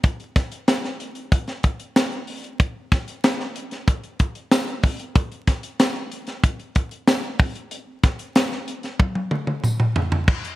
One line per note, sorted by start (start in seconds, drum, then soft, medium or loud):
0.04 kick loud
0.04 closed hi-hat medium
0.20 closed hi-hat soft
0.36 kick medium
0.36 snare soft
0.36 closed hi-hat medium
0.52 closed hi-hat medium
0.68 snare loud
0.68 closed hi-hat loud
0.68 tambourine medium
0.84 snare soft
0.84 closed hi-hat soft
1.00 closed hi-hat medium
1.15 closed hi-hat soft
1.32 kick medium
1.32 closed hi-hat medium
1.48 snare soft
1.48 closed hi-hat soft
1.63 kick medium
1.63 closed hi-hat medium
1.80 closed hi-hat soft
1.96 snare medium
1.96 closed hi-hat medium
1.96 tambourine medium
2.12 closed hi-hat soft
2.27 open hi-hat medium
2.44 closed hi-hat soft
2.60 kick loud
2.60 closed hi-hat medium
2.92 kick medium
2.92 snare soft
2.92 closed hi-hat medium
3.08 closed hi-hat medium
3.24 snare loud
3.24 closed hi-hat loud
3.24 tambourine medium
3.40 snare soft
3.56 closed hi-hat medium
3.71 snare soft
3.71 closed hi-hat soft
3.88 kick medium
3.88 closed hi-hat medium
4.04 closed hi-hat soft
4.19 kick medium
4.19 closed hi-hat medium
4.35 closed hi-hat soft
4.51 snare loud
4.51 closed hi-hat medium
4.51 tambourine medium
4.67 closed hi-hat soft
4.83 kick medium
4.83 open hi-hat medium
5.00 closed hi-hat medium
5.15 kick loud
5.15 closed hi-hat medium
5.32 closed hi-hat soft
5.47 kick medium
5.47 snare soft
5.47 closed hi-hat medium
5.63 closed hi-hat medium
5.80 snare loud
5.80 closed hi-hat loud
5.80 tambourine medium
5.96 closed hi-hat soft
6.12 closed hi-hat medium
6.27 snare soft
6.27 closed hi-hat soft
6.44 kick medium
6.44 closed hi-hat medium
6.59 closed hi-hat soft
6.75 kick medium
6.75 closed hi-hat medium
6.91 closed hi-hat medium
7.07 snare loud
7.07 closed hi-hat medium
7.07 tambourine medium
7.23 closed hi-hat soft
7.39 kick loud
7.39 open hi-hat medium
7.55 closed hi-hat medium
7.71 closed hi-hat medium
8.03 kick medium
8.03 snare soft
8.03 closed hi-hat medium
8.19 closed hi-hat medium
8.35 snare loud
8.35 closed hi-hat medium
8.35 tambourine medium
8.52 snare soft
8.52 closed hi-hat soft
8.68 closed hi-hat medium
8.83 snare soft
8.83 closed hi-hat soft
8.99 kick medium
8.99 high tom medium
9.15 high tom medium
9.31 mid tom medium
9.47 mid tom medium
9.64 mid tom medium
9.64 tambourine medium
9.80 mid tom medium
9.96 floor tom medium
10.12 floor tom medium
10.28 kick loud
10.28 crash loud
10.44 closed hi-hat medium